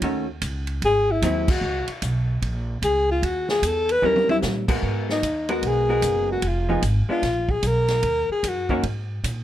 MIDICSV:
0, 0, Header, 1, 6, 480
1, 0, Start_track
1, 0, Tempo, 401070
1, 19, Time_signature, 4, 2, 24, 8
1, 11293, End_track
2, 0, Start_track
2, 0, Title_t, "Alto saxophone"
2, 0, Program_c, 0, 65
2, 1015, Note_on_c, 0, 68, 101
2, 1329, Note_on_c, 0, 64, 88
2, 1347, Note_off_c, 0, 68, 0
2, 1477, Note_off_c, 0, 64, 0
2, 1501, Note_on_c, 0, 64, 81
2, 1801, Note_on_c, 0, 66, 97
2, 1819, Note_off_c, 0, 64, 0
2, 2263, Note_off_c, 0, 66, 0
2, 3397, Note_on_c, 0, 68, 84
2, 3675, Note_off_c, 0, 68, 0
2, 3719, Note_on_c, 0, 65, 86
2, 3889, Note_on_c, 0, 66, 76
2, 3907, Note_off_c, 0, 65, 0
2, 4181, Note_off_c, 0, 66, 0
2, 4192, Note_on_c, 0, 68, 78
2, 4384, Note_on_c, 0, 69, 89
2, 4402, Note_off_c, 0, 68, 0
2, 4684, Note_on_c, 0, 71, 109
2, 4702, Note_off_c, 0, 69, 0
2, 4855, Note_on_c, 0, 70, 92
2, 4873, Note_off_c, 0, 71, 0
2, 5144, Note_off_c, 0, 70, 0
2, 5149, Note_on_c, 0, 64, 86
2, 5242, Note_off_c, 0, 64, 0
2, 6119, Note_on_c, 0, 63, 84
2, 6548, Note_off_c, 0, 63, 0
2, 6602, Note_on_c, 0, 66, 86
2, 6788, Note_on_c, 0, 68, 101
2, 6805, Note_off_c, 0, 66, 0
2, 7551, Note_off_c, 0, 68, 0
2, 7561, Note_on_c, 0, 66, 88
2, 7751, Note_on_c, 0, 65, 84
2, 7769, Note_off_c, 0, 66, 0
2, 8202, Note_off_c, 0, 65, 0
2, 8508, Note_on_c, 0, 65, 93
2, 8984, Note_on_c, 0, 68, 88
2, 9002, Note_off_c, 0, 65, 0
2, 9178, Note_on_c, 0, 70, 107
2, 9196, Note_off_c, 0, 68, 0
2, 9945, Note_off_c, 0, 70, 0
2, 9952, Note_on_c, 0, 68, 90
2, 10148, Note_on_c, 0, 66, 80
2, 10166, Note_off_c, 0, 68, 0
2, 10603, Note_off_c, 0, 66, 0
2, 11293, End_track
3, 0, Start_track
3, 0, Title_t, "Hollow-body jazz guitar"
3, 0, Program_c, 1, 26
3, 32, Note_on_c, 1, 51, 67
3, 41, Note_on_c, 1, 57, 61
3, 44, Note_on_c, 1, 61, 71
3, 47, Note_on_c, 1, 66, 65
3, 305, Note_off_c, 1, 51, 0
3, 309, Note_off_c, 1, 57, 0
3, 311, Note_off_c, 1, 61, 0
3, 313, Note_off_c, 1, 66, 0
3, 1470, Note_on_c, 1, 54, 67
3, 1482, Note_on_c, 1, 60, 70
3, 1488, Note_on_c, 1, 64, 68
3, 1743, Note_off_c, 1, 54, 0
3, 1749, Note_off_c, 1, 60, 0
3, 1752, Note_off_c, 1, 64, 0
3, 4813, Note_on_c, 1, 51, 60
3, 4822, Note_on_c, 1, 55, 71
3, 4825, Note_on_c, 1, 61, 66
3, 4832, Note_on_c, 1, 64, 68
3, 5541, Note_off_c, 1, 51, 0
3, 5545, Note_off_c, 1, 55, 0
3, 5547, Note_off_c, 1, 61, 0
3, 5550, Note_off_c, 1, 64, 0
3, 5604, Note_on_c, 1, 56, 65
3, 5610, Note_on_c, 1, 59, 64
3, 5616, Note_on_c, 1, 70, 68
3, 5618, Note_on_c, 1, 66, 65
3, 6218, Note_off_c, 1, 56, 0
3, 6221, Note_off_c, 1, 59, 0
3, 6224, Note_off_c, 1, 70, 0
3, 6225, Note_off_c, 1, 66, 0
3, 6570, Note_on_c, 1, 56, 63
3, 6574, Note_on_c, 1, 59, 68
3, 6581, Note_on_c, 1, 66, 64
3, 6586, Note_on_c, 1, 70, 65
3, 7015, Note_off_c, 1, 56, 0
3, 7017, Note_off_c, 1, 59, 0
3, 7021, Note_off_c, 1, 66, 0
3, 7023, Note_off_c, 1, 70, 0
3, 7050, Note_on_c, 1, 56, 61
3, 7054, Note_on_c, 1, 59, 67
3, 7060, Note_on_c, 1, 66, 70
3, 7064, Note_on_c, 1, 70, 68
3, 7661, Note_off_c, 1, 56, 0
3, 7664, Note_off_c, 1, 59, 0
3, 7666, Note_off_c, 1, 66, 0
3, 7668, Note_off_c, 1, 70, 0
3, 8004, Note_on_c, 1, 53, 65
3, 8012, Note_on_c, 1, 59, 72
3, 8014, Note_on_c, 1, 63, 70
3, 8019, Note_on_c, 1, 68, 69
3, 8156, Note_off_c, 1, 53, 0
3, 8159, Note_off_c, 1, 59, 0
3, 8161, Note_off_c, 1, 63, 0
3, 8163, Note_off_c, 1, 68, 0
3, 8484, Note_on_c, 1, 56, 49
3, 8495, Note_on_c, 1, 59, 55
3, 8502, Note_on_c, 1, 62, 62
3, 8636, Note_off_c, 1, 56, 0
3, 8641, Note_off_c, 1, 59, 0
3, 8645, Note_off_c, 1, 62, 0
3, 10412, Note_on_c, 1, 51, 66
3, 10416, Note_on_c, 1, 58, 69
3, 10420, Note_on_c, 1, 61, 78
3, 10423, Note_on_c, 1, 66, 69
3, 10562, Note_off_c, 1, 51, 0
3, 10564, Note_off_c, 1, 58, 0
3, 10566, Note_off_c, 1, 61, 0
3, 10567, Note_off_c, 1, 66, 0
3, 11293, End_track
4, 0, Start_track
4, 0, Title_t, "Upright bass"
4, 0, Program_c, 2, 32
4, 20, Note_on_c, 2, 39, 91
4, 484, Note_off_c, 2, 39, 0
4, 499, Note_on_c, 2, 37, 97
4, 963, Note_off_c, 2, 37, 0
4, 978, Note_on_c, 2, 32, 82
4, 1442, Note_off_c, 2, 32, 0
4, 1459, Note_on_c, 2, 39, 91
4, 1923, Note_off_c, 2, 39, 0
4, 1930, Note_on_c, 2, 37, 92
4, 2221, Note_off_c, 2, 37, 0
4, 2418, Note_on_c, 2, 35, 94
4, 2881, Note_off_c, 2, 35, 0
4, 2895, Note_on_c, 2, 34, 86
4, 3359, Note_off_c, 2, 34, 0
4, 3375, Note_on_c, 2, 37, 93
4, 3839, Note_off_c, 2, 37, 0
4, 3858, Note_on_c, 2, 39, 94
4, 4320, Note_off_c, 2, 39, 0
4, 4335, Note_on_c, 2, 40, 89
4, 4798, Note_off_c, 2, 40, 0
4, 4814, Note_on_c, 2, 39, 82
4, 5278, Note_off_c, 2, 39, 0
4, 5300, Note_on_c, 2, 46, 93
4, 5761, Note_off_c, 2, 46, 0
4, 5776, Note_on_c, 2, 44, 84
4, 6239, Note_off_c, 2, 44, 0
4, 6250, Note_on_c, 2, 39, 84
4, 6716, Note_off_c, 2, 39, 0
4, 6732, Note_on_c, 2, 35, 81
4, 7197, Note_off_c, 2, 35, 0
4, 7206, Note_on_c, 2, 30, 92
4, 7675, Note_off_c, 2, 30, 0
4, 7684, Note_on_c, 2, 29, 81
4, 8154, Note_off_c, 2, 29, 0
4, 8166, Note_on_c, 2, 32, 89
4, 8458, Note_off_c, 2, 32, 0
4, 8646, Note_on_c, 2, 34, 80
4, 9116, Note_off_c, 2, 34, 0
4, 9125, Note_on_c, 2, 35, 89
4, 9596, Note_off_c, 2, 35, 0
4, 9604, Note_on_c, 2, 39, 93
4, 9899, Note_off_c, 2, 39, 0
4, 10090, Note_on_c, 2, 42, 88
4, 10559, Note_off_c, 2, 42, 0
4, 10567, Note_on_c, 2, 44, 82
4, 11038, Note_off_c, 2, 44, 0
4, 11054, Note_on_c, 2, 46, 87
4, 11293, Note_off_c, 2, 46, 0
4, 11293, End_track
5, 0, Start_track
5, 0, Title_t, "Muted upright bass strokes"
5, 2243, Note_on_c, 9, 29, 44
5, 2363, Note_off_c, 9, 29, 0
5, 9923, Note_on_c, 9, 29, 41
5, 10043, Note_off_c, 9, 29, 0
5, 11293, End_track
6, 0, Start_track
6, 0, Title_t, "Drums"
6, 21, Note_on_c, 9, 51, 63
6, 22, Note_on_c, 9, 36, 26
6, 141, Note_off_c, 9, 51, 0
6, 142, Note_off_c, 9, 36, 0
6, 498, Note_on_c, 9, 44, 51
6, 498, Note_on_c, 9, 51, 72
6, 500, Note_on_c, 9, 36, 23
6, 617, Note_off_c, 9, 44, 0
6, 617, Note_off_c, 9, 51, 0
6, 620, Note_off_c, 9, 36, 0
6, 802, Note_on_c, 9, 51, 47
6, 922, Note_off_c, 9, 51, 0
6, 981, Note_on_c, 9, 36, 21
6, 981, Note_on_c, 9, 51, 61
6, 1100, Note_off_c, 9, 36, 0
6, 1101, Note_off_c, 9, 51, 0
6, 1461, Note_on_c, 9, 36, 19
6, 1465, Note_on_c, 9, 44, 62
6, 1465, Note_on_c, 9, 51, 68
6, 1580, Note_off_c, 9, 36, 0
6, 1584, Note_off_c, 9, 44, 0
6, 1584, Note_off_c, 9, 51, 0
6, 1773, Note_on_c, 9, 36, 84
6, 1773, Note_on_c, 9, 49, 81
6, 1892, Note_off_c, 9, 49, 0
6, 1893, Note_off_c, 9, 36, 0
6, 2245, Note_on_c, 9, 51, 52
6, 2365, Note_off_c, 9, 51, 0
6, 2417, Note_on_c, 9, 44, 64
6, 2417, Note_on_c, 9, 51, 66
6, 2418, Note_on_c, 9, 36, 18
6, 2537, Note_off_c, 9, 44, 0
6, 2537, Note_off_c, 9, 51, 0
6, 2538, Note_off_c, 9, 36, 0
6, 2897, Note_on_c, 9, 36, 21
6, 2901, Note_on_c, 9, 51, 57
6, 3017, Note_off_c, 9, 36, 0
6, 3020, Note_off_c, 9, 51, 0
6, 3377, Note_on_c, 9, 36, 19
6, 3381, Note_on_c, 9, 44, 54
6, 3381, Note_on_c, 9, 51, 65
6, 3496, Note_off_c, 9, 36, 0
6, 3500, Note_off_c, 9, 44, 0
6, 3500, Note_off_c, 9, 51, 0
6, 3858, Note_on_c, 9, 36, 24
6, 3866, Note_on_c, 9, 51, 62
6, 3978, Note_off_c, 9, 36, 0
6, 3986, Note_off_c, 9, 51, 0
6, 4172, Note_on_c, 9, 38, 55
6, 4292, Note_off_c, 9, 38, 0
6, 4338, Note_on_c, 9, 36, 21
6, 4343, Note_on_c, 9, 44, 57
6, 4343, Note_on_c, 9, 51, 74
6, 4458, Note_off_c, 9, 36, 0
6, 4463, Note_off_c, 9, 44, 0
6, 4463, Note_off_c, 9, 51, 0
6, 4656, Note_on_c, 9, 51, 50
6, 4776, Note_off_c, 9, 51, 0
6, 4826, Note_on_c, 9, 48, 50
6, 4946, Note_off_c, 9, 48, 0
6, 4976, Note_on_c, 9, 48, 61
6, 5096, Note_off_c, 9, 48, 0
6, 5136, Note_on_c, 9, 48, 89
6, 5255, Note_off_c, 9, 48, 0
6, 5292, Note_on_c, 9, 38, 61
6, 5293, Note_on_c, 9, 44, 57
6, 5412, Note_off_c, 9, 38, 0
6, 5413, Note_off_c, 9, 44, 0
6, 5606, Note_on_c, 9, 36, 73
6, 5607, Note_on_c, 9, 49, 73
6, 5725, Note_off_c, 9, 36, 0
6, 5727, Note_off_c, 9, 49, 0
6, 5777, Note_on_c, 9, 36, 19
6, 5896, Note_off_c, 9, 36, 0
6, 6096, Note_on_c, 9, 38, 49
6, 6216, Note_off_c, 9, 38, 0
6, 6257, Note_on_c, 9, 36, 22
6, 6261, Note_on_c, 9, 44, 51
6, 6261, Note_on_c, 9, 51, 65
6, 6376, Note_off_c, 9, 36, 0
6, 6381, Note_off_c, 9, 44, 0
6, 6381, Note_off_c, 9, 51, 0
6, 6566, Note_on_c, 9, 51, 46
6, 6686, Note_off_c, 9, 51, 0
6, 6734, Note_on_c, 9, 36, 19
6, 6734, Note_on_c, 9, 51, 59
6, 6854, Note_off_c, 9, 36, 0
6, 6854, Note_off_c, 9, 51, 0
6, 7207, Note_on_c, 9, 44, 65
6, 7207, Note_on_c, 9, 51, 67
6, 7211, Note_on_c, 9, 36, 20
6, 7327, Note_off_c, 9, 44, 0
6, 7327, Note_off_c, 9, 51, 0
6, 7331, Note_off_c, 9, 36, 0
6, 7685, Note_on_c, 9, 51, 63
6, 7690, Note_on_c, 9, 36, 23
6, 7805, Note_off_c, 9, 51, 0
6, 7809, Note_off_c, 9, 36, 0
6, 8168, Note_on_c, 9, 44, 53
6, 8168, Note_on_c, 9, 51, 71
6, 8169, Note_on_c, 9, 36, 22
6, 8288, Note_off_c, 9, 44, 0
6, 8288, Note_off_c, 9, 51, 0
6, 8289, Note_off_c, 9, 36, 0
6, 8647, Note_on_c, 9, 36, 25
6, 8650, Note_on_c, 9, 38, 33
6, 8651, Note_on_c, 9, 51, 53
6, 8767, Note_off_c, 9, 36, 0
6, 8770, Note_off_c, 9, 38, 0
6, 8771, Note_off_c, 9, 51, 0
6, 8959, Note_on_c, 9, 36, 55
6, 9079, Note_off_c, 9, 36, 0
6, 9127, Note_on_c, 9, 44, 50
6, 9127, Note_on_c, 9, 51, 63
6, 9128, Note_on_c, 9, 36, 20
6, 9247, Note_off_c, 9, 44, 0
6, 9247, Note_off_c, 9, 51, 0
6, 9248, Note_off_c, 9, 36, 0
6, 9435, Note_on_c, 9, 38, 36
6, 9436, Note_on_c, 9, 51, 43
6, 9555, Note_off_c, 9, 38, 0
6, 9556, Note_off_c, 9, 51, 0
6, 9606, Note_on_c, 9, 51, 64
6, 9607, Note_on_c, 9, 36, 27
6, 9726, Note_off_c, 9, 36, 0
6, 9726, Note_off_c, 9, 51, 0
6, 10091, Note_on_c, 9, 36, 26
6, 10096, Note_on_c, 9, 44, 57
6, 10096, Note_on_c, 9, 51, 69
6, 10211, Note_off_c, 9, 36, 0
6, 10216, Note_off_c, 9, 44, 0
6, 10216, Note_off_c, 9, 51, 0
6, 10403, Note_on_c, 9, 36, 48
6, 10523, Note_off_c, 9, 36, 0
6, 10573, Note_on_c, 9, 36, 23
6, 10573, Note_on_c, 9, 51, 56
6, 10692, Note_off_c, 9, 51, 0
6, 10693, Note_off_c, 9, 36, 0
6, 11056, Note_on_c, 9, 36, 26
6, 11061, Note_on_c, 9, 44, 64
6, 11061, Note_on_c, 9, 51, 69
6, 11176, Note_off_c, 9, 36, 0
6, 11181, Note_off_c, 9, 44, 0
6, 11181, Note_off_c, 9, 51, 0
6, 11293, End_track
0, 0, End_of_file